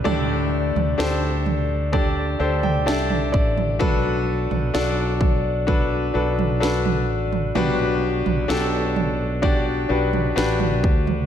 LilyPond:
<<
  \new Staff \with { instrumentName = "Grand piano" } { \time 4/4 \key d \mixolydian \tempo 4 = 64 << { a,4. r4 a''16 g''16 e''8 d''8 | r1 | b,4. r2 r8 | } \\ { <d' g' a' d''>4 <d' g' a' c''>4 <d' g' a' d''>8 <d' g' a' c''>8 <d' g' a' d''>4 | <d' fis' a' b'>4 <d' fis' a' d''>4 <d' fis' a' b'>8 <d' fis' a' b'>8 <d' fis' a' b'>4 | <d' fis' g' b'>4 <d' fis' g' a'>4 <d' fis' g' d''>8 <d' fis' g' b'>8 <d' fis' g' b'>4 | } >> }
  \new Staff \with { instrumentName = "Fretless electric bass" } { \clef bass \time 4/4 \key d \mixolydian d,8. d,16 d,4. d,8 c,8 a,,8 | b,,8. b,,16 b,,4. b,,4 a,,8 | b,,8. b,,16 b,,4. b,,8 a,,8 d,8 | }
  \new DrumStaff \with { instrumentName = "Drums" } \drummode { \time 4/4 tomfh8. tomfh16 sn8 tomfh8 <bd tomfh>8. tomfh16 sn16 tomfh16 bd16 tomfh16 | <bd tomfh>8. tomfh16 sn8 <bd tomfh>8 <bd tomfh>8. tomfh16 sn16 tomfh8 tomfh16 | tomfh8. tomfh16 sn8 tomfh8 <bd tomfh>8. tomfh16 sn16 tomfh16 bd16 tomfh16 | }
>>